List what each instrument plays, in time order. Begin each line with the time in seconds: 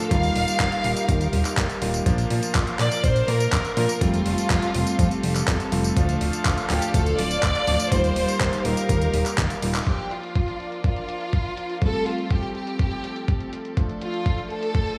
Already playing: violin section A4, string section F5
0.11 analog synth bass D#2, electric grand piano G3 A#3 D#4 F4, string section D#4 G4 A#4, violin section F5, kick, closed hi-hat, tambourine
0.23 closed hi-hat, tambourine
0.36 analog synth bass D#1, open hi-hat
0.48 closed hi-hat, tambourine
0.60 analog synth bass D#2, kick, clap, closed hi-hat, tambourine
0.72 closed hi-hat, tambourine
0.84 analog synth bass D#1, electric grand piano G3 A#3 D#4 F4, open hi-hat
0.96 closed hi-hat, tambourine
1.09 analog synth bass D#2, kick, closed hi-hat, tambourine
1.21 closed hi-hat, tambourine
1.33 analog synth bass D#1, open hi-hat
1.45 clap, closed hi-hat, tambourine
1.57 analog synth bass D#2, kick, clap, closed hi-hat, tambourine
1.70 closed hi-hat, tambourine
1.82 analog synth bass D#1, electric grand piano G3 A#3 D#4 F4, open hi-hat
1.94 closed hi-hat, tambourine
2.06 analog synth bass A#1, electric grand piano F3 A#3 D4 F4, string section D4 F4 A#4, kick, closed hi-hat, tambourine
2.18 closed hi-hat, tambourine
2.30 analog synth bass A#2, open hi-hat
2.43 closed hi-hat, tambourine
2.55 analog synth bass A#1, kick, clap, closed hi-hat, tambourine
2.67 closed hi-hat, tambourine
2.79 analog synth bass A#2, electric grand piano F3 A#3 D4 F4, violin section D5, clap, open hi-hat
2.92 closed hi-hat, tambourine
3.04 analog synth bass A#1, violin section C5, kick, closed hi-hat, tambourine
3.16 closed hi-hat, tambourine
3.28 analog synth bass A#2, violin section A#4, open hi-hat
3.40 closed hi-hat, tambourine
3.52 analog synth bass A#1, kick, clap, closed hi-hat, tambourine
3.65 closed hi-hat, tambourine
3.77 analog synth bass A#2, electric grand piano F3 A#3 D4 F4, violin section A#4, open hi-hat
3.89 closed hi-hat, tambourine
4.01 analog synth bass F2, electric grand piano G3 A3 C4 F4, string section C4 G4 A4, violin section F4, kick, closed hi-hat, tambourine
4.14 closed hi-hat, tambourine
4.26 analog synth bass F1, open hi-hat
4.38 closed hi-hat, tambourine
4.50 analog synth bass F2, kick, clap, closed hi-hat, tambourine
4.62 closed hi-hat, tambourine
4.74 analog synth bass F1, electric grand piano G3 A3 C4 F4, open hi-hat
4.87 closed hi-hat, tambourine
4.99 analog synth bass F2, kick, closed hi-hat, tambourine
5.11 closed hi-hat, tambourine
5.23 analog synth bass F1, open hi-hat
5.36 clap, closed hi-hat, tambourine
5.48 analog synth bass F2, kick, clap, closed hi-hat, tambourine
5.60 closed hi-hat, tambourine
5.72 analog synth bass F1, electric grand piano G3 A3 C4 F4, open hi-hat
5.84 closed hi-hat, tambourine
5.96 analog synth bass D2, electric grand piano F3 A3 D4 F4, string section D4 F4 F5, kick, closed hi-hat, tambourine
6.09 closed hi-hat, tambourine
6.21 analog synth bass D1, open hi-hat
6.33 closed hi-hat, tambourine
6.45 analog synth bass D2, kick, clap, closed hi-hat, tambourine
6.58 closed hi-hat, tambourine
6.70 analog synth bass D1, electric grand piano F3 A3 D4 F4, violin section G4, clap, open hi-hat
6.82 closed hi-hat, tambourine
6.94 analog synth bass D2, violin section A4, kick, closed hi-hat, tambourine
7.06 closed hi-hat, tambourine
7.19 analog synth bass D1, violin section D5, open hi-hat
7.31 closed hi-hat, tambourine
7.43 analog synth bass D2, kick, clap, closed hi-hat, tambourine
7.55 closed hi-hat, tambourine
7.67 analog synth bass D1, electric grand piano F3 A3 D4 F4, open hi-hat
7.80 closed hi-hat, tambourine
7.92 analog synth bass D#2, electric grand piano G3 A#3 D#4 F4, string section D#4 G4 A#4 F5, violin section C5, kick, closed hi-hat, tambourine
8.04 closed hi-hat, tambourine
8.16 analog synth bass D#1, open hi-hat
8.28 closed hi-hat, tambourine
8.40 analog synth bass D#2, kick, clap, closed hi-hat
8.53 closed hi-hat, tambourine
8.65 analog synth bass D#1, electric grand piano G3 A#3 D#4 F4, violin section A#4, open hi-hat
8.77 closed hi-hat, tambourine
8.89 analog synth bass D#2, kick, closed hi-hat, tambourine
9.02 closed hi-hat, tambourine
9.14 analog synth bass D#1, open hi-hat
9.26 clap, closed hi-hat, tambourine
9.38 analog synth bass D#2, kick, clap, closed hi-hat, tambourine
9.50 closed hi-hat, tambourine
9.62 analog synth bass D#1, electric grand piano G3 A#3 D#4 F4, open hi-hat
9.75 clap, tambourine
9.87 string section F3 D4 A#4 D5, electric grand piano F3 A#3 D4 F4, violin section G4, kick, closed hi-hat
9.99 closed hi-hat
10.11 violin section F4, closed hi-hat
10.23 closed hi-hat
10.36 kick, closed hi-hat
10.48 closed hi-hat
10.60 closed hi-hat
10.72 closed hi-hat
10.84 violin section F4, kick, closed hi-hat
10.96 closed hi-hat
11.09 closed hi-hat
11.21 closed hi-hat
11.33 kick, closed hi-hat
11.45 closed hi-hat
11.57 closed hi-hat
11.70 closed hi-hat
11.82 electric grand piano G3 A3 C4 F4, string section C4 G4 A4, violin section A4, kick, closed hi-hat
11.94 closed hi-hat
12.06 violin section F4, closed hi-hat
12.18 closed hi-hat
12.31 violin section G4, kick, closed hi-hat
12.43 closed hi-hat
12.55 violin section G4, closed hi-hat
12.67 closed hi-hat
12.79 kick, closed hi-hat
12.92 closed hi-hat
13.04 closed hi-hat
13.16 closed hi-hat
13.28 kick, closed hi-hat
13.40 closed hi-hat
13.53 closed hi-hat
13.65 closed hi-hat
13.77 electric grand piano F3 A3 D4 F4, string section A3 D4, kick, closed hi-hat
13.89 closed hi-hat
14.01 violin section F4, closed hi-hat
14.14 closed hi-hat
14.26 kick, closed hi-hat
14.38 closed hi-hat
14.50 violin section A4, closed hi-hat
14.63 closed hi-hat
14.75 kick, closed hi-hat
14.87 closed hi-hat